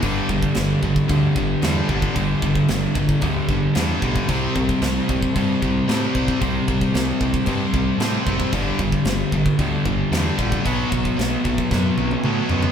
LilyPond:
<<
  \new Staff \with { instrumentName = "Overdriven electric guitar" } { \clef bass \time 4/4 \key g \major \tempo 4 = 113 <g, d g>2 <g, d g>2 | <g, d g>2 <g, d g>2 | <c g c'>2 <c g c'>2 | <c g c'>2 <c g c'>2 |
<g, d g>2 <g, d g>2 | <b, fis b>2 <b, fis b>2 | }
  \new Staff \with { instrumentName = "Distorted electric guitar" } { \clef bass \time 4/4 \key g \major <g, d g>8 <g, d>8 <g, d>8 <g, d>8 <g, d>8 <g, d>8 <g, d g>8 <g, d g>8 | <g, d>8 <g, d>8 <g, d>8 <g, d>8 <g, d>8 <g, d>8 <g, d g>8 <g, d g>8 | <c g c'>8 <c g>8 <c g>8 <c g>8 <c g>8 <c g>8 <c g c'>8 <c g c'>8 | <c g>8 <c g>8 <c g>8 <c g>8 <c g>8 <c g>8 <c g c'>8 <c g c'>8 |
<g, d g>8 <g, d>8 <g, d>8 <g, d>8 <g, d>8 <g, d>8 <g, d g>8 <g, d g>8 | <b, fis b>8 <b, fis>8 <b, fis>8 <b, fis>8 <b, fis>8 <b, fis>8 <b, fis b>8 <b, fis b>8 | }
  \new Staff \with { instrumentName = "Picked electric bass" } { \clef bass \time 4/4 \key g \major g,,8 g,,8 g,,8 g,,8 d,8 g,,8 e,8 g,,8 | g,,8 g,,8 g,,8 g,,8 d,8 g,,8 e,8 b,,8 | c,8 c,8 c,8 c,8 g,8 c,8 a,8 c,8 | c,8 c,8 c,8 c,8 g,8 c,8 a,8 fis,,8 |
g,,8 g,,8 g,,8 g,,8 d,8 g,,8 e,8 ais,,8 | b,,8 b,,8 b,,8 b,,8 fis,8 b,,8 a,8 fis,8 | }
  \new DrumStaff \with { instrumentName = "Drums" } \drummode { \time 4/4 <cymc bd>8 bd16 bd16 <cymc sn>8 bd16 bd16 <cymc bd>8 bd8 <cymc sn>8 bd16 bd16 | <cymc bd>8 bd16 bd16 <cymc sn>8 bd16 bd16 <cymc bd>8 bd8 <cymc sn>8 bd16 bd16 | <cymc bd>8 bd16 bd16 <cymc sn>8 bd16 bd16 <cymc bd>8 bd8 <cymc sn>8 bd16 bd16 | <cymc bd>8 bd16 bd16 <cymc sn>8 bd16 bd16 <cymc bd>8 bd8 <cymc sn>8 bd16 bd16 |
<cymc bd>8 bd16 bd16 <cymc sn>8 bd16 bd16 <cymc bd>8 bd8 <cymc sn>8 bd16 bd16 | <cymc bd>8 bd16 bd16 <cymc sn>8 bd16 bd16 <bd sn>8 tommh16 tommh16 toml8 tomfh16 tomfh16 | }
>>